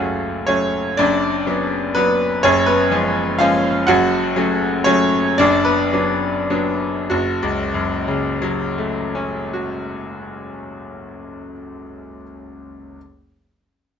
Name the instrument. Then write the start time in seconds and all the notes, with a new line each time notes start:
grand piano
Already playing: F#1 F#2 F#3 A3 C#4 F4 F#4 F5 F#5
0.47 F#3 A3 C#4 C#5
0.97 F#1 F#2 D4 D5
1.47 F#3 B3
1.95 F#3 B3 B4
2.43 F#1 F#2 C#4 C#5
2.66 B3 B4
2.91 F3 G#3 C#4
3.38 F3 G#3 C#4 F4 F5
3.87 F#1 F#2 F#4 F#5
4.36 F#3 A3 C#4
4.84 F#3 A3 C#4 C#5
5.38 F#1 F#2 D4 D5
5.65 B3 B4
5.93 F#3 B3 D4
6.50 F#3 B3 D4
7.10 F#1 F#4
7.43 C#2
7.74 F#2
8.08 C#3
8.42 F#3
8.78 A3
9.15 C#4
9.53 F#4